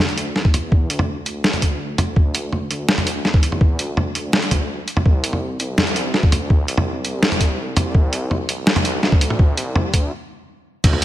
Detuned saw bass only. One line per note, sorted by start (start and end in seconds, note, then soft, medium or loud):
0.00 0.34 D2 medium
0.36 0.89 E2 loud
0.90 1.97 D2 medium
1.98 2.15 D2 medium
2.16 2.69 D2 medium
2.71 3.23 D2 medium
3.25 3.78 E2 loud
3.79 4.32 D2 loud
4.33 4.86 D2 loud
5.06 5.58 C2 medium
5.60 6.13 C2 loud
6.14 6.67 D2 loud
6.68 7.75 C2 loud
7.77 7.93 C2 medium
7.95 8.47 C2 loud
8.49 9.02 C2 medium
9.03 9.56 D2 loud
9.57 9.92 C2 loud
9.93 10.12 D2 loud
10.84 11.05 D2 loud